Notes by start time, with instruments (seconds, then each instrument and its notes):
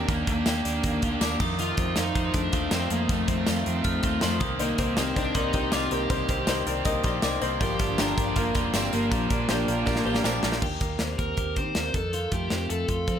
Already playing: clean electric guitar A#3 D4 G4, glockenspiel A#5
0.08 fingered electric bass D#2, overdriven electric guitar D#3 A#3 D4 G4, clean electric guitar D#3, lead electric guitar A#3, kick, closed hi-hat, tambourine
0.27 fingered electric bass D#2, lead electric guitar A#3, clean electric guitar D4, kick, closed hi-hat
0.36 overdriven electric guitar A#3 D4 G4
0.46 fingered electric bass D#2, clean electric guitar G4, snare, closed hi-hat, tambourine
0.65 fingered electric bass D#2, clean electric guitar D4, closed hi-hat, tambourine
0.73 overdriven electric guitar A#3 D4 G4
0.84 fingered electric bass D#2, clean electric guitar A#3, kick, closed hi-hat
1.01 fingered electric bass D2, overdriven electric guitar D#3 A#3 D4 G4, clean electric guitar F4, kick, closed hi-hat, tambourine
1.12 clean electric guitar G4
1.20 fingered electric bass D#2, overdriven electric guitar D#3 A#3 D4 G4, clean electric guitar D4, glockenspiel D6, snare, closed hi-hat, tambourine
1.39 fingered electric bass F2, overdriven electric guitar D#3 A3 D#4 F4, clean electric guitar D#3, glockenspiel D#6, kick, tambourine, crash
1.58 overdriven electric guitar F2 C3 D#3 A3 D#4 F4, clean electric guitar D#3, lead electric guitar F4, closed hi-hat, tambourine
1.77 fingered electric bass F2, clean electric guitar C4, kick, closed hi-hat
1.86 overdriven electric guitar D#3 A3 D#4 F4
1.96 fingered electric bass F2, lead electric guitar D#4, clean electric guitar F4, snare, closed hi-hat, tambourine
2.15 fingered electric bass F2, clean electric guitar C4, kick, closed hi-hat, tambourine
2.24 overdriven electric guitar D#3 A3 D#4 F4
2.34 fingered electric bass F2, clean electric guitar A3, lead electric guitar D4, kick, closed hi-hat, tambourine
2.52 fingered electric bass D#2, overdriven electric guitar D#3 A3 D#4 F4, clean electric guitar F4, kick, closed hi-hat, tambourine
2.71 fingered electric bass F2, overdriven electric guitar D#3 A3 D#4 F4, clean electric guitar C4, lead electric guitar C4, snare, closed hi-hat, tambourine
2.90 fingered electric bass F2, overdriven electric guitar D#3 A3 D#4 F4, clean electric guitar A3, lead electric guitar A#3, closed hi-hat, tambourine
3.09 overdriven electric guitar F2 C3 D#3 A3 D#4 F4, fingered electric bass F2, clean electric guitar D#3, lead electric guitar A3, kick, closed hi-hat, tambourine
3.28 fingered electric bass F2, lead electric guitar A3, clean electric guitar C4, kick, closed hi-hat
3.36 overdriven electric guitar D#3 A3 D#4 F4
3.46 fingered electric bass F2, clean electric guitar F4, snare, closed hi-hat, tambourine
3.66 fingered electric bass F2, clean electric guitar C4, closed hi-hat, tambourine
3.75 overdriven electric guitar D#3 A3 D#4 F4
3.84 fingered electric bass F2, clean electric guitar A3, glockenspiel F6, kick, closed hi-hat
4.03 fingered electric bass D#2, overdriven electric guitar D#3 A3 D#4 F4, clean electric guitar F4, kick, closed hi-hat, tambourine
4.21 fingered electric bass F2, overdriven electric guitar D#3 A3 D#4 F4, clean electric guitar C4, glockenspiel C6, snare, closed hi-hat, tambourine
4.40 fingered electric bass C2, overdriven electric guitar D#3 A#3 C4 G4, clean electric guitar D#3, glockenspiel D#6, kick, closed hi-hat, tambourine
4.59 overdriven electric guitar C3 D#3 A#3 C4 G4, clean electric guitar D#3, lead electric guitar A#3, upright piano D#4 A#4 C5, closed hi-hat, tambourine
4.78 fingered electric bass C2, clean electric guitar C4, upright piano D#4 A#4 C5, kick, closed hi-hat, tambourine
4.88 overdriven electric guitar A#3 C4 G4
4.97 fingered electric bass C2, lead electric guitar C4, upright piano D#4 A#4 D#5, clean electric guitar G4, snare, closed hi-hat, tambourine
5.16 fingered electric bass C2, clean electric guitar C4, lead electric guitar D4, upright piano D#4 A#4 C5, kick, closed hi-hat, tambourine
5.24 overdriven electric guitar A#3 C4 G4
5.34 fingered electric bass C2, clean electric guitar A#3, upright piano D#4 A#4 D5, lead electric guitar D#4, glockenspiel C6, kick, closed hi-hat
5.53 fingered electric bass C2, overdriven electric guitar D#3 A#3 C4 G4, upright piano D#4 A#4 C5, clean electric guitar G4, kick, closed hi-hat, tambourine
5.71 fingered electric bass C2, overdriven electric guitar D#3 A#3 C4 G4, clean electric guitar C4, upright piano D#4 A#4 D#5, lead electric guitar F4, glockenspiel D6, snare, closed hi-hat, tambourine
5.90 fingered electric bass C2, overdriven electric guitar D#3 A#3 C4 G4, clean electric guitar A#3, upright piano D#4 A#4 C5, lead electric guitar G4, closed hi-hat, tambourine
6.10 fingered electric bass C2, overdriven electric guitar C3 D#3 A#3 C4 G4, clean electric guitar D#3, upright piano D#4 A#4 C5, kick, closed hi-hat, tambourine
6.29 fingered electric bass C2, clean electric guitar C4, upright piano D#4 A#4 C5, kick, closed hi-hat, tambourine
6.38 overdriven electric guitar A#3 C4 G4
6.47 fingered electric bass C2, upright piano D#4 A#4 C5, clean electric guitar G4, glockenspiel C6, snare, closed hi-hat, tambourine
6.66 fingered electric bass C2, clean electric guitar C4, upright piano D#4 A#4 D5, closed hi-hat, tambourine
6.75 overdriven electric guitar A#3 C4 G4
6.85 fingered electric bass C2, clean electric guitar A#3, upright piano D#4 A#4 D#5, glockenspiel D#6, kick, closed hi-hat, tambourine
7.04 fingered electric bass A#1, overdriven electric guitar D#3 A#3 C4 G4, upright piano D#4 A#4 D5, clean electric guitar G4, glockenspiel C6, kick, closed hi-hat, tambourine
7.22 fingered electric bass C2, overdriven electric guitar D#3 A#3 C4 G4, clean electric guitar C4, upright piano D#4 A#4 D5, glockenspiel D6, snare, closed hi-hat, tambourine
7.41 fingered electric bass C2, overdriven electric guitar D#3 A#3 C4, clean electric guitar A#3, upright piano D#4 A#4 C5, glockenspiel C6, closed hi-hat, tambourine
7.45 overdriven electric guitar G4
7.60 fingered electric bass G1, clean electric guitar F3, overdriven electric guitar G3 A#3 D4 F4, upright piano F4 G4 A#4, lead electric guitar G4, glockenspiel C6, kick, closed hi-hat, tambourine
7.79 fingered electric bass G1, clean electric guitar D4, upright piano F4 G4 A#4, kick, closed hi-hat, tambourine
7.89 overdriven electric guitar A#3 D4 F4
7.98 fingered electric bass G1, lead electric guitar D4, upright piano F4 G4 A4, clean electric guitar G4, glockenspiel A#5, snare, closed hi-hat, tambourine
8.17 fingered electric bass G1, clean electric guitar D4, upright piano F4 G4 A#4, kick, closed hi-hat, tambourine
8.26 overdriven electric guitar A#3 D4 F4
8.36 fingered electric bass G1, clean electric guitar A#3, lead electric guitar A#3, upright piano F4 G4 A#4, kick, closed hi-hat, tambourine
8.54 fingered electric bass F1, overdriven electric guitar G3 A#3 D4 F4, clean electric guitar F4, upright piano F4 G4 A#4, kick, closed hi-hat, tambourine
8.64 clean electric guitar G4
8.73 fingered electric bass G1, overdriven electric guitar G3 A#3 D4 F4, lead electric guitar C4, clean electric guitar D4, upright piano F4 G4 A#4, snare, closed hi-hat, tambourine
8.91 fingered electric bass G1, overdriven electric guitar G3 A#3 D4 F4, clean electric guitar A#3, lead electric guitar A#3, upright piano F4 G4 A#4, closed hi-hat, tambourine
9.11 fingered electric bass A#1, overdriven electric guitar A#2 G3 A#3 D4 F4, clean electric guitar F3, upright piano D4 G4 A#4, glockenspiel A#5, kick, closed hi-hat, tambourine
9.30 fingered electric bass A#1, upright piano D4 G4 A#4, clean electric guitar D4, kick, closed hi-hat, tambourine
9.39 overdriven electric guitar A#3 D4 F4
9.49 fingered electric bass A#1, upright piano D4 G4 C5, clean electric guitar G4, snare, closed hi-hat, tambourine
9.68 fingered electric bass A#1, upright piano D4 G4 A#4, clean electric guitar D4, closed hi-hat, tambourine
9.77 overdriven electric guitar A#3 D4 F4
9.86 fingered electric bass A#1, clean electric guitar A#3, upright piano D4 G4 A#4, kick, snare, tambourine
9.96 snare
10.05 fingered electric bass A1, overdriven electric guitar G3 A#3 D4 F4, upright piano D4 G4 C5, clean electric guitar G4, tambourine
10.15 snare
10.24 fingered electric bass A#1, overdriven electric guitar G3 A#3 D4 F4, clean electric guitar C4, upright piano D4 G4 A#4, glockenspiel D6, snare, tambourine
10.34 clean electric guitar D4
10.43 fingered electric bass A#1, overdriven electric guitar G3 A#3 D4 F4, clean electric guitar A#3, upright piano D4 G4 A#4, snare, tambourine
10.52 snare
10.62 fingered electric bass D#2, clean electric guitar D#3 G4, kick, crash
10.81 fingered electric bass D#2, clean electric guitar A#3, kick, closed hi-hat
10.99 fingered electric bass D#2, clean electric guitar C4, snare, closed hi-hat
11.18 fingered electric bass D#2, clean electric guitar A#3, lead electric guitar A#4, kick, closed hi-hat
11.37 fingered electric bass D#2, clean electric guitar G4, kick, closed hi-hat
11.56 fingered electric bass D#3, clean electric guitar C4, lead electric guitar C5, kick, closed hi-hat
11.75 fingered electric bass D#2, clean electric guitar A#3, snare, closed hi-hat
11.94 fingered electric bass F2, clean electric guitar D#3, lead electric guitar A4, kick, closed hi-hat
12.13 clean electric guitar D#3 F4, closed hi-hat
12.32 fingered electric bass F2, clean electric guitar A3, lead electric guitar G4, kick, closed hi-hat
12.50 fingered electric bass F2, clean electric guitar C4, snare, closed hi-hat
12.70 fingered electric bass F2, clean electric guitar A3, lead electric guitar A4, closed hi-hat
12.88 fingered electric bass F2, clean electric guitar F4, kick, closed hi-hat
13.07 fingered electric bass F3, clean electric guitar C4, kick, closed hi-hat